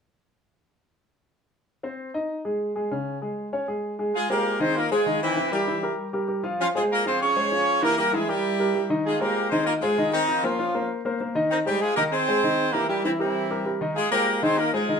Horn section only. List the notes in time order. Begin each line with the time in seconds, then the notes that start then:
4.14 G#3 F4 G#4
4.29 A#3 G4 A#4
4.60 C4 G#4 C5
4.76 A#3 F4 A#4
4.91 G#3 F4 G#4
5.22 E3 C4 E4
5.52 G3 E4 G4
6.60 F3 C#4 F4
6.75 G#3 F4 G#4
6.91 A#3 F4 A#4
7.06 C4 G#4 C5
7.21 C#4 G#4 C#5
7.82 A#3 G4 A#4
7.97 A#3 G4 A#4
8.13 G#3 E4 G#4
8.28 G3 E4 G4
9.05 G#3 F4 G#4
9.19 A#3 G4 A#4
9.50 C4 G#4 C5
9.65 A#3 F4 A#4
9.81 G#3 F4 G#4
10.12 D#3 C4 D#4
10.43 F3 C#4 F4
11.50 D#3 C4 D#4
11.65 G3 D#4 G4
11.81 G#3 F4 G#4
11.95 A#3 G4 A#4
12.11 C4 G#4 C5
12.72 A#3 G4 A#4
12.88 G3 E4 G4
13.03 E3 C4 E4
13.19 E3 C4 E4
13.95 G#3 F4 G#4
14.11 A#3 G4 A#4
14.42 C4 G#4 C5
14.57 A#3 F4 A#4
14.72 G#3 F4 G#4